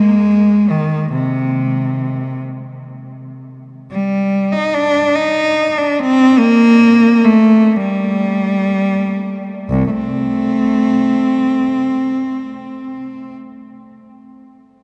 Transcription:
cello
Already playing: G#3
0.70 D#3
1.12 C3
3.91 G3
4.52 D#4
4.74 D4
5.16 D#4
5.78 D4
5.99 C4
6.39 A#3
7.25 A3
7.76 G3
9.70 C2
9.90 A3 C4

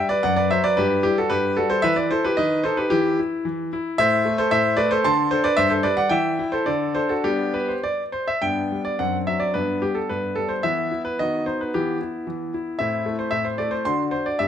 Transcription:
grand piano
Already playing: G3
0.09 B4 D5
0.23 F#2 D5 F#5
0.36 B4 D5
0.51 F#3 C5 E5
0.64 B4 D5
0.77 G2 G4 B4
1.03 G3 E4 G4
1.18 F#4 A4
1.30 G2 G4 B4
1.57 G3 F#4 A4
1.70 A4 C5
1.82 E3 B4 E5
1.96 B4 D5
2.11 E4 A4 C5
2.24 G4 B4
2.37 D#3 B4 D#5
2.64 D#4 A4 C5
2.77 G4 B4
2.90 E3 E4 G4
3.19 E4
3.45 E3
3.73 E4
3.98 A2 C5 E5
4.25 A3
4.38 A4 C5
4.51 A2 C5 E5
4.77 A3 B4 D5
4.91 A4 C5
5.04 D3 A5 C6
5.31 D4 A4 C5
5.44 B4 D5
5.57 G2 C5 E5
5.70 A4 C5
5.83 G3 B4 D5
5.97 D5 F#5
6.09 E3 E5 G5
6.39 E4
6.52 A4 C5
6.66 D3 A4 D5
6.95 D4 A4 C5
7.09 F#4 A4
7.24 G3 B3 D4 G4
7.54 B4
7.68 C5
7.84 D5
8.12 C5
8.28 E5
8.42 G2 B3 D4 G5
8.72 G3
8.85 D5
8.99 F#2 C4 D4 F#5
9.27 F#3 E5
9.40 D5
9.54 G2 B3 D4 B4
9.82 G3 G4
9.95 A4
10.09 G2 B4
10.35 G3 A4
10.49 C5
10.63 E3 B3 E4 E5
10.91 E4
11.05 B4
11.19 D#3 B3 F#4 D#5
11.46 D#4 C5
11.61 B4
11.74 E3 B3 E4 G4
12.01 E4
12.27 E3
12.54 E4
12.79 A2 C4 E4 E5
13.06 A3
13.19 C5
13.31 A2 E5
13.45 C5
13.58 A3 D5
13.71 C5
13.85 D3 D4 F#4 C6
14.11 D4 C5
14.26 D5
14.39 G2 B3 G4 E5

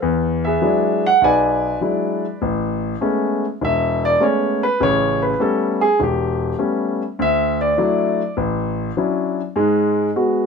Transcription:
grand piano
0.02 E2
0.45 G#4 B4 E5
0.62 F#3 G#3 D4 E4
1.06 F#5
1.21 B1 B4 D5 G#5
1.81 F#3 G#3 D4 E4
2.42 A1
3.01 G#3 A3 B3 C#4
3.62 E1 E5
4.05 D5
4.20 G#3 A3 B3 C#4 C#5
4.63 B4
4.80 A1 C#3 C#5
5.22 B4
5.40 G3 A3 B3 C#4 A4
5.81 G#4
6.00 E1 G4
6.58 G3 A3 B3 C#4
7.19 D2 E5
7.61 D5
7.78 F#3 A3 D4 E4
8.37 A1
8.97 F#3 C#4 D4 E4
9.56 G#2 G#3
10.16 G#3 B3 F#4

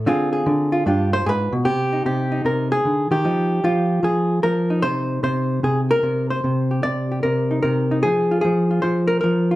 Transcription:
hollow-body jazz guitar
0.06 D3 C4 F4 G#4
0.33 G#4
0.46 D3
0.72 F4
0.86 G2 D4 F4 G4
1.13 C5
1.26 G#2 G#4 B4
1.52 B2
1.65 C3 G4
1.93 D#4
2.06 C3 G4
2.32 D#4
2.45 C3 A#4
2.72 G#4
2.85 D3
3.11 D#3 G4
3.25 F3 D#4
3.64 F3 F4
4.03 F3 G#4
4.43 F3 A#4
4.70 D#4
4.82 C3 C5
5.23 C3 C5
5.63 C3 G#4
5.91 A#4
6.03 C3
6.30 C5
6.44 C3
6.71 G4
6.83 C3 D5
7.12 G4
7.23 C3 A#4
7.51 D#4
7.63 C3 A#4
7.91 D#4
8.03 F3 G#4
8.31 F4
8.41 F3 G#4
8.71 F4
8.82 F3 C5
9.07 A#4
9.21 F3 A#4
9.51 F4

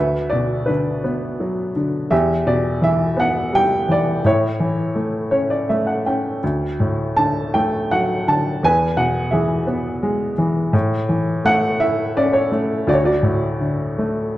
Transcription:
upright piano
Already playing: D2 B4 E5
0.30 B2 D5
0.66 D3 D4 B4
1.04 B3
1.40 F#3
1.76 D3
2.11 E2 G4 E5
2.47 B2 D5
2.82 E3 E5
3.17 B3 F#5
3.53 G3 G5
3.88 E3 D5
4.25 A2 E4 C#5
4.60 E3
4.95 A3
5.31 C#4 C#5
5.50 D5
5.69 A3 E5
5.87 F#5
6.06 C#4 G5
6.43 D2
6.80 A2
7.17 D3 A5
7.54 A3 G5
7.91 F#3 F#5
8.28 D3 A5
8.63 E2 B4 G#5
8.97 B2 F#5
9.31 E3 G#4 E5
9.67 B3
10.03 G#3
10.38 E3
10.73 A2
11.09 E3
11.45 A3 F#5
11.80 E4 E5
12.16 C#4 D5
12.33 C#5
12.52 A3
12.87 D2 F#4 D5
12.94 C#5
13.04 F#4 D5
13.23 A2
13.60 D3
13.98 A3

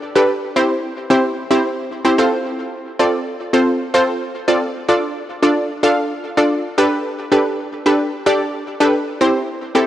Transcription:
synth pluck
0.15 D4 G4 A4 B4
0.56 C4 E4 G4 C5
1.10 C4 E4 G4 C5
1.51 C4 E4 G4 C5
2.05 C4 E4 G4 C5
2.18 C4 F4 A4 C5
2.99 C4 F4 A4 D5
3.53 C4 F4 A4 C5
3.94 C4 F4 A4 C5
4.48 C4 F4 A4 D5
4.89 D4 F4 A4 D5
5.42 D4 F4 A4 D5
5.83 D4 F4 A4 F5
6.37 D4 F4 A4 D5
6.78 D4 G4 A4 B4
7.32 D4 G4 A4 B4
7.86 D4 G4 A4 B4
8.26 D4 G4 A4 D5
8.80 D4 G4 A4 B4
9.21 C4 E4 G4 C5
9.75 C4 E4 G4 A4

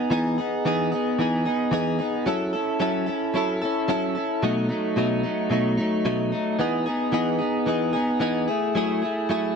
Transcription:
clean electric guitar
Already playing: B3 D#4 G#4
0.10 E3 B3 D#4 G#4
0.38 B3 D#4 G#4
0.65 E3 B3 D#4 G#4
0.92 B3 D#4 G#4
1.19 E3 B3 D#4 G#4
1.46 B3 D#4 G#4
1.71 E3 B3 D#4 G#4
1.99 B3 D#4 G#4
2.26 F#3 C#4 E4 A4
2.53 C#4 E4 A4
2.80 F#3 C#4 E4 A4
3.06 C#4 E4 A4
3.34 F#3 C#4 E4 A4
3.62 C#4 E4 A4
3.88 F#3 C#4 E4 A4
4.15 C#4 E4 A4
4.43 B2 F#3 A3 D#4
4.69 F#3 A3 D#4
4.96 B2 F#3 A3 D#4
5.23 F#3 A3 D#4
5.50 B2 F#3 A3 D#4
5.77 F#3 A3 D#4
6.05 B2 F#3 A3 D#4
6.32 F#3 A3 D#4
6.59 E3 B3 D#4 G#4
6.86 B3 D#4 G#4
7.12 E3 B3 D#4 G#4
7.39 B3 D#4 G#4
7.66 E3 B3 D#4 G#4
7.93 B3 D#4 G#4
8.20 E3 B3 D#4 G#4
8.48 A3 E4 G#4
8.75 F#3 A3 E4 G#4
9.02 A3 E4 G#4
9.29 F#3 A3 E4 G#4

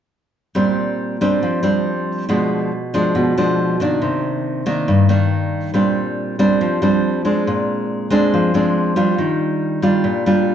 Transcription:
nylon-string guitar
0.55 A#2 G3 C4 D4
1.21 G3 C4 D4
1.42 F3
1.63 G3 C4 D4
2.29 B2 F3 G#3 D4
2.94 F3 G#3 D4
3.15 B2
3.38 F3 G#3 D4
3.80 D#3 A#3 D4
4.02 C3
4.66 D#3 A#3 D4
4.88 G2
5.09 D#3 A#3 D4
5.74 A#2 G3 C4 D4
6.39 G3 C4 D4
6.61 F3
6.82 G3 C4 D4
7.25 G#3 C4 D4
7.47 A#2
8.10 G#3 C4 D4
8.34 F3
8.54 G#3 C4 D4
8.96 G3 D4 F4
9.18 D#3
9.82 G3 D4 F4
10.04 A#2
10.26 G3 D4 F4

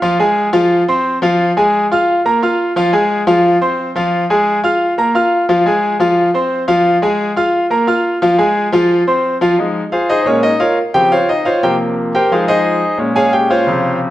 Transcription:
grand piano
0.02 F3 F4 F5
0.19 G#3 G#4 G#5
0.53 F3 F4 F5
0.88 C4 C5 C6
1.22 F3 F4 F5
1.57 G#3 G#4 G#5
1.92 F4 F5 F6
2.25 A#3 A#4 A#5
2.42 F4 F5 F6
2.76 F3 F4 F5
2.93 G#3 G#4 G#5
3.27 F3 F4 F5
3.61 C4 C5 C6
3.96 F3 F4 F5
4.30 G#3 G#4 G#5
4.64 F4 F5 F6
4.98 A#3 A#4 A#5
5.15 F4 F5 F6
5.49 F3 F4 F5
5.66 G#3 G#4 G#5
6.00 F3 F4 F5
6.34 C4 C5 C6
6.68 F3 F4 F5
7.02 G#3 G#4 G#5
7.36 F4 F5 F6
7.70 A#3 A#4 A#5
7.87 F4 F5 F6
8.22 F3 F4 F5
8.38 G#3 G#4 G#5
8.72 F3 F4 F5
9.07 C4 C5 C6
9.41 F3 F4 F5
9.59 F3 G#3 D#4
9.92 F4 G#4 C5 F5
10.10 D#4 G#4 C5 D#5
10.22 A#2 C5
10.26 G#3 C#4 G#4 A#4 C#5
10.43 D#4 D#5
10.60 F4 A#4 C#5 F5
10.94 C#3 F3 C4 G4 G5
11.12 F4 C5 C#5 F5
11.29 D#4 D#5
11.45 F4 C5 C#5 F5
11.63 C3 F3 A#3 G4 A#4 C5 G5
12.15 G4 A#4 C5 G5
12.31 F3 G#3 D#4 F4 G#4 C5 F5
12.48 D#4 G#4 C5 D#5
12.98 A#2 G#3 C#4
13.16 G#4 C#5 F5 G#5
13.33 G4 G5
13.50 F4 C5 C#5 F5
13.67 C3 C#3 F3

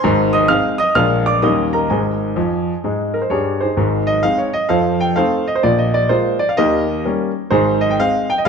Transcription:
grand piano
Already playing: C5 G#5 C6
0.04 G#1 G#2
0.33 D#5 D#6
0.48 G#3 C4 D#4 F5 F6
0.78 D#5 D#6
0.95 A#1 A#2 G#3 A#3 D4 F5 F6
1.26 D5 D6
1.42 D#2 D#3 G3 C#4 D#4 D#5 D#6
1.73 A#4 A#5
1.90 G#1 G#2 G#4 D#5 G#5
2.36 F2 F3
2.84 G#2 G#3
3.14 A#4
3.22 C5
3.30 G2 G3 G#4 C#5
3.61 D#4 G#4 C5
3.77 G#1 G#2
4.07 D#5
4.23 G#3 C4 D#4 F5
4.38 C#5
4.53 D#5
4.69 F2 F3 A4 C5 F5
5.01 G5
5.16 A3 C4 D#4 A4 C5 F5
5.47 D#5
5.55 C5
5.63 A#1 A#2 D5
5.79 D#5
5.94 D5
6.09 G#3 A#3 F4 C5
6.39 D5
6.49 F5
6.57 D#2 D#3 G4 A#4 D#5
7.05 G3 A#3 C#4
7.50 G#1 G#2 D#4 G#4 C5
7.81 D#5
7.91 G5
8.00 G#3 C4 F5
8.30 G5
8.38 D#5
8.45 F5

